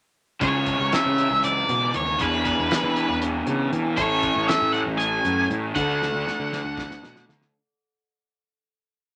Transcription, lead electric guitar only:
0.43 C#5
0.94 E5
1.44 D5
1.96 C#5
2.21 B4
3.97 C#5
4.48 E5
4.72 F#5
4.98 G#5
5.75 F#5

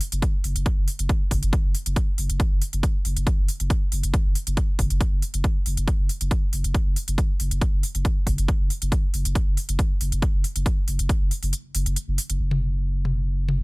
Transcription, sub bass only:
0.12 F#1
0.44 F#1
0.56 F#1
0.77 F#1
0.99 F#1
1.31 F#1
1.43 F#1
1.64 F#1
1.86 F#1
2.18 F#1
2.30 F#1
2.51 F#1
2.73 F#1
3.05 F#1
3.17 F#1
3.38 F#1
3.60 F#1
3.92 F#1
4.04 F#1
4.25 F#1
4.47 F#1
4.79 F#1
4.90 F#1
5.12 F#1
5.34 F#1
5.66 F#1
5.77 F#1
5.99 F#1
6.21 F#1
6.53 F#1
6.64 F#1
6.86 F#1
7.08 F#1
7.40 F#1
7.51 F#1
7.73 F#1
7.95 F#1
8.27 F#1
8.38 F#1
8.60 F#1
8.82 F#1
9.14 F#1
9.25 F#1
9.47 F#1
9.69 F#1
10.01 F#1
10.12 F#1
10.34 F#1
10.56 F#1
10.88 F#1
10.99 F#1
11.21 F#1
11.43 F#1
11.75 F#1
11.86 F#1
12.08 F#1
12.30 F#1
12.40 F#1

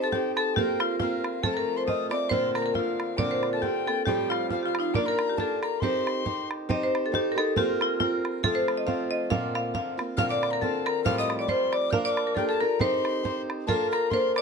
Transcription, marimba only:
0.04 A4
0.12 G4
0.37 A4
0.56 G4
0.80 F4
1.00 F4
1.44 A4
1.57 A#4
1.78 C5
1.88 D#5
2.11 D5
2.29 C5
2.56 A#4
2.62 A#4
2.75 F4
3.18 D5
3.31 C5
3.53 A4
3.62 G4
3.87 A4
4.06 G4
4.30 F4
4.50 F4
4.63 F4 G4
4.79 D#4 F4
4.95 D5
5.08 A#4
5.29 G4
5.40 A4
5.63 A#4
5.83 C5
6.71 D#5
6.83 C5
7.06 A4
7.15 G4
7.32 A#4
7.38 A4
7.57 G4
7.82 F4
8.00 F4
8.44 A4
8.55 C5
8.77 D#5
8.87 F5
9.11 D#5
9.30 F5
9.55 F5
9.75 F5
10.19 F5
10.31 D5
10.53 A#4
10.61 A4
10.86 A#4
11.06 F5
11.18 D#5
11.39 D5
11.49 C5
11.73 D5
11.93 F5
12.05 D5
12.27 A#4
12.35 G4 A4
12.49 A4
12.61 A#4
12.81 C5
13.69 A4
13.93 A#4
14.13 C5
14.38 D5

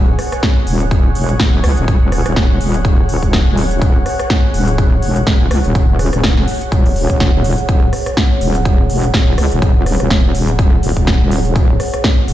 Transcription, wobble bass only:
Already playing: D#1
0.67 D#1
1.15 E1
1.40 D#1
1.64 C#2
1.77 D#1
2.26 D#1
2.61 D#1
3.09 D#1
3.23 D#1
3.47 D#1
3.82 D#1
4.54 D#1
5.03 E1
5.27 D#1
5.51 C#2
5.65 D#1
6.13 D#1
6.72 D#1
7.10 D#1
7.34 D#1
7.69 D#1
8.41 D#1
8.90 E1
9.14 D#1
9.38 C#2
9.52 D#1
10.00 D#1
10.35 D#1
10.83 D#1
10.97 D#1
11.21 D#1
11.56 D#1
12.28 D#1

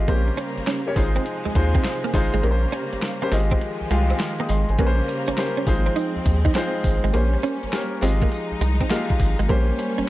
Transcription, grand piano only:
Already playing: F4
0.08 A#3 C4 G4 C5
0.15 C#4
0.87 A#3 C#4 G4 C#5
0.96 G#3 D#4 F4 C5
1.55 G#3 D#4 F4 C5
2.13 G#3 D#4 F4 C5
2.43 A#3 C#4 G4 A#4
2.51 C5
3.22 A#3 C#4 G4 C5
3.32 G#3 F4 G4 D#5
3.91 G#3 F4 G4 F5 G5
4.20 F5
4.41 G5 D#6
4.50 D#5 C6
4.70 C5 G#5
4.79 A#3 C#4 G4 B4
4.87 C5
5.38 A#3 C#4 G4 C5
5.67 G#3 D#4 F4 C5
6.55 G#3 D#4 F4 C5
7.13 A#3 C#4 G4 C5
7.72 A#3 C#4 G4 A#4
8.01 G#3 F4 G4 D#5
8.90 G#3 F4 G4 F5
9.49 A#3 C#4 G4 C5

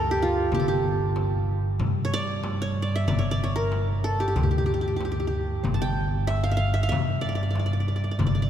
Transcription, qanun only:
Already playing: G4 A4
0.11 G4
0.22 F4
0.55 G4
0.60 A4
0.68 G4
2.05 C#5
2.14 D5
2.62 C#5
2.82 D5
2.96 E5
3.08 D5
3.19 C#5
3.31 D5
3.44 C#5
3.56 A#4
4.04 A4
4.20 G4
4.28 G4
4.36 G4
4.43 G4
4.51 G4
4.58 G4
4.66 G4
4.74 G4
4.81 G4
4.88 G4
4.96 G4
5.05 G4
5.12 G4
5.20 G4
5.27 G4
5.74 A5
5.82 G5
6.27 E5
6.43 F5
6.51 E5
6.57 F5
6.74 E5
6.83 F5
6.89 E5
7.21 D5
7.29 D5
7.35 D5
7.43 D5
7.50 D5
7.59 D5
7.66 D5
7.73 D5
7.80 D5
7.88 D5
7.96 D5
8.04 D5
8.11 D5
8.19 D5
8.27 D5
8.35 D5
8.42 D5

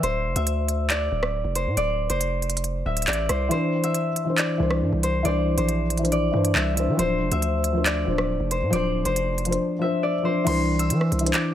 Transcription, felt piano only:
3.49 E3 D4
3.54 C5
4.25 E3 D4
4.30 C5
4.58 E3 D4
4.62 C5
5.23 E3 D4
5.28 C5
5.99 E3 D4
6.04 C5
6.31 E3 D4
6.36 C5
6.75 E3 D4
6.80 C5
6.97 F3 D4
7.01 C5
7.73 F3 D4
7.78 C5
8.05 F3 D4
8.10 C5
8.70 F3 D4
8.75 C5
9.46 F3 D4
9.51 C5
9.79 F3 D4
9.84 C5
10.23 F3 D4
10.27 C5
10.44 E3 D4
10.49 C5
11.20 E3 D4
11.25 C5

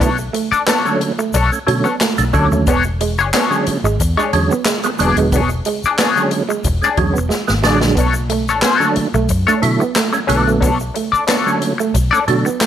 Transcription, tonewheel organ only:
0.68 A3 D4
0.85 D3 F#3 A3 C#4
1.52 A3 C#4
1.67 D3 F#3 A3 C#4
2.18 A3 D4
2.33 D3 F#3 A3 C#4
3.33 G#3 C#4
3.50 D3 F#3 G#3 C#4
4.17 G#3 D4
4.33 D3 F#3 G#3 C#4
4.84 G#3 B3
4.99 D3 F#3 G#3 B3
5.99 G#3 D4
6.16 D3 F#3 G#3 C#4
6.82 G#3 C#4
6.97 D3 F#3 G#3 C#4
7.48 G#3 B3
7.64 D3 F#3 G#3 D4
8.63 A3 C#4
8.80 D3 F#3 A3 D4
9.47 A3 D4
9.62 D3 F#3 A3 E4
10.13 A3 C#4
10.28 D3 F#3 A3 B3
11.28 A3 D4
11.46 D3 F#3 A3 C#4
12.12 A3 C#4
12.28 D3 F#3 A3 D4

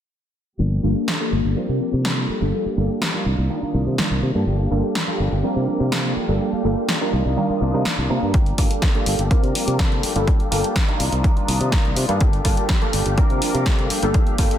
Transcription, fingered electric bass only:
0.60 G1
0.84 G1
1.32 G1
1.45 G1
1.57 muted fingered electric bass stroke
1.69 C3
1.93 C3
2.29 muted fingered electric bass stroke
2.42 G1
2.66 muted fingered electric bass stroke
2.78 G1
3.26 C2
3.38 C2
3.62 muted fingered electric bass stroke
3.74 C2
3.87 C3
3.99 muted fingered electric bass stroke
4.11 C2
4.23 C3
4.35 G2
4.47 G1
4.71 G1
5.20 G1
5.32 G1
5.44 muted fingered electric bass stroke
5.56 C3
5.80 C3
6.17 muted fingered electric bass stroke
6.29 G1
6.53 muted fingered electric bass stroke
6.65 G1
7.13 C2
7.26 C2
7.50 muted fingered electric bass stroke
7.62 C2
7.74 C3
7.86 muted fingered electric bass stroke
7.98 C2
8.10 C3
8.22 G2
8.34 G1
8.58 G1
9.07 G1
9.19 G1
9.43 C3
9.67 C3
10.03 muted fingered electric bass stroke
10.16 G1
10.40 muted fingered electric bass stroke
10.52 G1
11.00 C2
11.12 C2
11.37 muted fingered electric bass stroke
11.48 C2
11.61 C3
11.72 muted fingered electric bass stroke
11.85 C2
11.97 C3
12.09 G2
12.21 G1
12.45 G1
12.94 G1
13.06 G1
13.18 muted fingered electric bass stroke
13.30 C3
13.54 C3
13.91 muted fingered electric bass stroke
14.03 G1
14.27 muted fingered electric bass stroke
14.39 G1

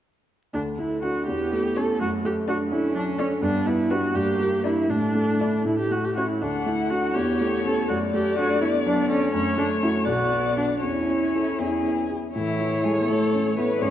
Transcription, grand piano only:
0.54 D2
0.79 A3
1.04 D4 F#4
1.28 E2
1.53 A3
1.77 C#4 A4
2.01 F#2
2.25 A3
2.48 D4 A4
2.71 D4 A4
2.95 F#3
3.19 D4 A4
3.42 G2
3.66 B3
3.90 D4 G4
4.15 G2
4.39 A#3
4.64 D4 E4
4.90 A2
5.15 A3
5.40 D4 E4
5.65 A2
5.91 A3
6.16 C#4 E4
6.42 D2
6.66 A3
6.91 D4 F#4
7.16 E2
7.41 A3
7.65 C#4 A4
7.90 F#2
8.14 A3
8.38 D4 A4
8.63 D4 A4
8.86 F#3
9.10 D4 A4
9.34 F#2
9.58 A3
9.82 C#4 F#4
10.06 B1
10.32 B3
10.57 D4 F#4
10.83 E2
11.09 C#4
11.35 E4 A4
11.60 E2
11.85 B3
12.11 E4 G#4
12.35 A2
12.61 E3
12.85 E4 A4
13.09 E4 A4
13.34 C#4
13.58 E4 A4
13.82 G#2

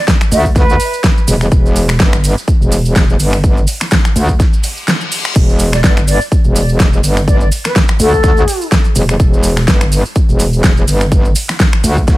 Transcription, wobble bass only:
0.32 D2
0.56 D2
1.28 E1
1.52 E1
2.00 G1
2.61 E1
2.96 E1
3.20 G1
4.16 D2
5.36 E1
5.84 G1
6.45 E1
6.80 E1
7.04 G1
8.00 D2
8.24 D2
8.96 E1
9.20 E1
9.68 G1
10.29 E1
10.64 E1
10.88 G1
11.84 D2
12.08 D2

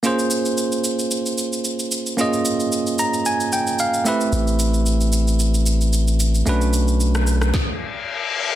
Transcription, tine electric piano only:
0.03 A#3 C#4 F4 G#4 C5
2.17 A#3 C#4 F4 G#4 D#5
2.99 A#5
3.26 G#5
3.53 G5
3.80 F5
4.05 A3 C4 E4 G4 B4 E5
6.46 A3 C#4 D4 F#4 B4

